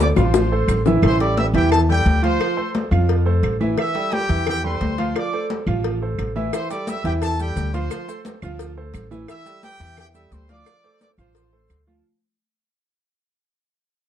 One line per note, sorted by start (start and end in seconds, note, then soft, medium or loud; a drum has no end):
0.00 0.11 D2 loud
0.00 0.11 A3 medium
0.00 0.11 A4 medium
0.00 0.11 C5 medium
0.00 0.08 D5 medium
0.00 0.08 D6 medium
0.00 maracas medium
0.16 0.64 A1 medium
0.16 0.45 F3 loud
0.16 0.45 F4 loud
0.16 0.82 C5 medium
0.16 0.45 F5 medium
0.16 0.82 C6 medium
0.16 high bongo medium
0.16 claves medium
0.16 maracas soft
0.34 cowbell loud
0.34 high bongo loud
0.34 high conga medium
0.34 maracas medium
0.52 0.80 A3 medium
0.52 0.80 A4 medium
0.52 0.80 C5 medium
0.68 0.98 A1 medium
0.68 cowbell medium
0.68 low conga medium
0.68 claves medium
0.68 maracas medium
0.86 1.00 E3 medium
0.86 1.00 E4 medium
0.86 1.01 E5 medium
0.86 low bongo loud
0.86 low conga medium
0.86 maracas soft
1.02 1.50 A1 loud
1.02 1.17 E3 medium
1.02 1.17 E4 medium
1.02 1.20 C5 loud
1.02 1.17 E5 medium
1.02 1.20 C6 medium
1.02 cowbell loud
1.02 high conga soft
1.02 claves medium
1.20 1.48 G3 medium
1.20 1.49 G4 medium
1.20 1.49 A4 medium
1.20 1.37 D5 medium
1.20 1.36 D6 medium
1.20 cowbell medium
1.20 high conga soft
1.37 1.46 E5 loud
1.37 1.45 E6 medium
1.37 cowbell medium
1.37 high conga loud
1.54 2.02 E2 loud
1.54 1.83 E3 loud
1.54 1.83 E4 loud
1.54 1.71 G4 medium
1.54 1.83 E5 loud
1.54 1.71 G5 medium
1.54 cowbell medium
1.72 1.80 A4 medium
1.72 1.79 A5 loud
1.72 cowbell loud
1.72 high conga soft
1.72 low conga medium
1.72 claves medium
1.89 2.17 G3 medium
1.89 2.17 G4 medium
1.89 2.22 G4 medium
1.89 2.17 A4 medium
1.89 2.21 G5 loud
1.89 high conga soft
1.89 low conga medium
2.06 2.36 D2 medium
2.06 cowbell medium
2.06 high conga medium
2.22 2.37 F3 loud
2.22 2.37 F4 loud
2.22 2.72 C5 medium
2.22 2.37 F5 loud
2.22 2.72 C6 medium
2.22 cowbell medium
2.22 high conga medium
2.40 2.54 F3 medium
2.40 2.54 F4 medium
2.40 2.54 F5 medium
2.40 cowbell loud
2.40 claves medium
2.57 2.85 A3 medium
2.57 2.85 A4 medium
2.57 2.86 C5 medium
2.57 high conga soft
2.75 cowbell medium
2.75 high conga loud
2.91 3.39 F2 loud
2.91 3.20 F3 medium
2.91 3.20 F4 medium
2.91 3.20 F5 medium
2.91 high conga soft
2.91 claves medium
3.09 cowbell loud
3.09 high conga soft
3.26 3.54 A3 medium
3.26 3.54 A4 medium
3.26 3.55 C5 medium
3.26 high conga soft
3.43 3.73 A1 medium
3.43 cowbell medium
3.43 high conga soft
3.43 claves medium
3.61 3.75 E3 loud
3.61 3.75 E4 medium
3.61 3.75 E5 loud
3.61 high conga medium
3.78 3.92 E3 medium
3.78 3.92 E4 medium
3.78 3.92 E5 medium
3.78 4.11 E5 loud
3.78 4.11 E6 medium
3.78 cowbell loud
3.78 high conga soft
3.78 claves medium
3.95 4.23 G3 medium
3.95 4.23 G4 medium
3.95 4.24 A4 medium
3.95 cowbell medium
3.95 high conga soft
4.12 4.47 G4 medium
4.12 4.46 G5 loud
4.12 cowbell medium
4.12 high conga loud
4.29 4.77 E2 loud
4.29 4.58 E3 medium
4.29 4.58 E4 loud
4.29 4.58 E5 loud
4.29 cowbell medium
4.47 4.64 G4 medium
4.47 4.63 G5 loud
4.47 cowbell loud
4.47 high conga soft
4.47 low conga medium
4.47 claves medium
4.64 4.92 G3 medium
4.64 4.92 G4 medium
4.64 4.93 A4 medium
4.64 5.12 C5 medium
4.64 5.12 C6 medium
4.64 high conga soft
4.64 low conga medium
4.81 5.11 D2 medium
4.81 cowbell medium
4.81 high conga medium
4.98 5.12 F3 loud
4.98 5.12 F4 loud
4.98 5.13 F5 loud
4.98 cowbell medium
4.98 high conga medium
5.15 5.29 F3 medium
5.15 5.30 F4 medium
5.15 5.48 D5 medium
5.15 5.30 F5 medium
5.15 5.49 D6 medium
5.15 cowbell loud
5.15 high conga soft
5.15 claves medium
5.33 5.61 A3 medium
5.33 5.61 A4 medium
5.33 5.61 C5 medium
5.33 high conga soft
5.50 cowbell medium
5.50 high conga loud
5.67 6.15 A1 loud
5.67 5.95 F3 loud
5.67 5.96 F4 medium
5.67 5.96 F5 medium
5.67 claves medium
5.84 cowbell loud
5.84 high conga soft
6.02 6.30 A3 medium
6.02 6.30 A4 medium
6.02 6.30 C5 medium
6.02 high conga soft
6.18 6.49 A1 medium
6.18 cowbell medium
6.18 high conga soft
6.18 claves medium
6.36 6.50 E3 medium
6.36 6.50 E4 loud
6.36 6.50 E5 loud
6.36 high conga medium
6.53 6.67 E3 medium
6.53 6.68 E4 medium
6.53 6.70 C5 loud
6.53 6.68 E5 medium
6.53 6.70 C6 medium
6.53 cowbell loud
6.53 claves medium
6.53 maracas medium
6.70 6.99 G3 medium
6.70 6.99 G4 medium
6.70 6.99 A4 medium
6.70 6.87 D5 medium
6.70 6.87 D6 medium
6.70 cowbell medium
6.70 high conga soft
6.70 maracas medium
6.87 7.06 E5 loud
6.87 7.06 E6 medium
6.87 cowbell medium
6.87 high conga loud
6.87 maracas medium
7.04 7.53 E2 medium
7.04 7.33 E3 loud
7.04 7.33 E4 loud
7.04 7.13 G4 medium
7.04 7.33 E5 medium
7.04 7.13 G5 loud
7.04 cowbell medium
7.04 maracas soft
7.22 7.39 A4 medium
7.22 7.38 A5 loud
7.22 cowbell loud
7.22 high conga soft
7.22 low conga medium
7.22 claves medium
7.22 maracas medium
7.39 7.68 G3 medium
7.39 7.68 G4 medium
7.39 7.72 G4 medium
7.39 7.68 A4 medium
7.39 7.72 G5 loud
7.39 high conga soft
7.39 maracas medium
7.56 7.87 D2 loud
7.56 cowbell medium
7.56 high conga medium
7.56 maracas medium
7.73 7.88 F3 loud
7.73 7.88 F4 loud
7.73 8.22 C5 loud
7.73 7.88 F5 loud
7.73 8.22 C6 medium
7.73 cowbell medium
7.73 high conga medium
7.73 maracas soft
7.90 8.05 F3 medium
7.90 8.05 F4 medium
7.90 8.05 F5 medium
7.90 cowbell loud
7.90 high conga soft
7.90 claves medium
7.90 maracas medium
8.08 8.36 A3 medium
8.08 8.37 A4 medium
8.08 8.37 C5 medium
8.08 high conga soft
8.08 maracas medium
8.25 cowbell medium
8.25 high conga loud
8.25 maracas medium
8.42 8.91 D2 medium
8.42 8.71 F3 loud
8.42 8.71 F4 loud
8.42 8.71 F5 loud
8.42 high conga soft
8.42 claves medium
8.42 maracas soft
8.59 cowbell loud
8.59 high conga soft
8.59 maracas medium
8.77 9.05 A3 medium
8.77 9.05 A4 medium
8.77 9.06 C5 medium
8.77 high conga soft
8.94 9.24 A1 loud
8.94 cowbell medium
8.94 high conga soft
8.94 claves medium
8.94 maracas medium
9.11 9.25 E3 loud
9.11 9.25 E4 loud
9.11 9.26 E5 loud
9.11 high conga medium
9.11 maracas soft
9.28 9.42 E3 medium
9.28 9.43 E4 medium
9.28 9.43 E5 medium
9.28 9.61 E5 loud
9.28 9.61 E6 medium
9.28 cowbell loud
9.28 claves medium
9.28 maracas medium
9.45 9.74 G3 medium
9.45 9.74 G4 medium
9.45 9.74 A4 medium
9.45 cowbell medium
9.45 high conga soft
9.45 maracas medium
9.63 9.96 G4 medium
9.63 9.96 G5 loud
9.63 cowbell medium
9.63 high conga loud
9.63 maracas medium
9.80 10.28 E2 medium
9.80 10.09 E3 medium
9.80 10.09 E4 loud
9.80 10.09 E5 medium
9.80 cowbell medium
9.80 maracas soft
9.97 10.06 G4 medium
9.97 10.06 G5 loud
9.97 cowbell loud
9.97 high conga soft
9.97 low conga medium
9.97 claves medium
9.97 maracas medium
10.14 10.43 G3 medium
10.14 10.43 G4 medium
10.14 10.43 A4 medium
10.14 10.31 E5 medium
10.14 10.31 E6 medium
10.14 high conga soft
10.14 maracas medium
10.31 10.62 D2 medium
10.31 10.49 C5 medium
10.31 10.50 C6 medium
10.31 cowbell medium
10.31 high conga medium
10.31 maracas medium
10.49 10.63 F3 loud
10.49 10.64 F4 loud
10.49 10.98 D5 loud
10.49 10.64 F5 loud
10.49 10.98 D6 medium
10.49 cowbell medium
10.49 high conga medium
10.49 maracas soft
10.66 10.81 F3 medium
10.66 10.81 F4 medium
10.66 10.81 F5 medium
10.66 cowbell loud
10.66 claves medium
10.66 maracas medium
10.84 11.12 A3 medium
10.84 11.12 A4 medium
10.84 11.12 C5 medium
10.84 high conga soft
11.01 11.10 D5 medium
11.01 11.10 D6 medium
11.01 cowbell medium
11.01 high conga loud
11.01 maracas medium
11.18 11.66 A1 medium
11.18 11.46 F3 medium
11.18 11.47 F4 loud
11.18 11.84 C5 medium
11.18 11.47 F5 loud
11.18 11.84 C6 medium
11.18 high conga soft
11.18 claves medium
11.18 maracas soft
11.35 cowbell loud
11.35 maracas medium
11.53 11.81 A3 medium
11.53 11.81 A4 medium
11.53 11.81 C5 medium
11.53 high conga soft
11.70 12.00 D2 medium
11.70 cowbell medium
11.70 high conga soft
11.70 claves medium
11.70 maracas medium
11.87 12.01 F3 loud
11.87 12.01 F4 medium
11.87 12.02 F5 medium
11.87 high conga loud
11.87 maracas soft